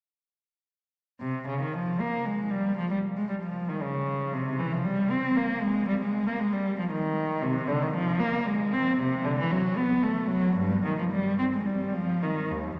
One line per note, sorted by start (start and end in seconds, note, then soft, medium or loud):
1.20 1.45 C3 medium
1.48 1.60 C#3 medium
1.61 1.74 D#3 medium
1.74 2.00 F3 medium
2.00 2.26 A#3 medium
2.26 2.52 G#3 soft
2.52 2.78 G3 medium
2.77 2.90 F3 medium
2.90 2.98 G3 medium
3.17 3.30 G#3 medium
3.29 3.35 G3 medium
3.43 3.68 F3 medium
3.69 3.82 D#3 medium
3.82 4.34 C#3 medium
4.34 4.60 C3 medium
4.59 4.72 E3 medium
4.73 4.86 F3 medium
4.85 5.11 G3 medium
5.11 5.37 C4 medium
5.36 5.62 A#3 medium
5.62 5.88 G#3 medium
5.88 6.01 G3 medium
6.01 6.26 G#3 medium
6.27 6.40 A#3 medium
6.40 6.52 G#3 medium
6.53 6.78 G3 medium
6.79 6.91 F3 medium
6.92 7.42 D#3 medium
7.42 7.68 C3 medium
7.68 7.81 D3 medium
7.82 7.94 D#3 medium
7.94 8.19 F3 medium
8.20 8.46 A#3 medium
8.46 8.72 G#3 medium
8.73 8.99 C4 medium
8.99 9.24 C3 medium
9.25 9.38 D3 medium
9.39 9.51 E3 medium
9.52 9.77 F#3 medium
9.77 10.03 B3 medium
10.04 10.30 A3 medium
10.30 10.57 F#3 medium
10.58 10.84 G2 medium
10.85 10.98 D#3 medium
10.99 11.04 F3 medium
11.12 11.38 G3 medium
11.39 11.44 C4 medium
11.53 11.66 G#3 medium
11.66 11.94 G3 medium
11.94 12.22 F3 medium
12.23 12.50 D#3 medium
12.50 12.78 D#2 soft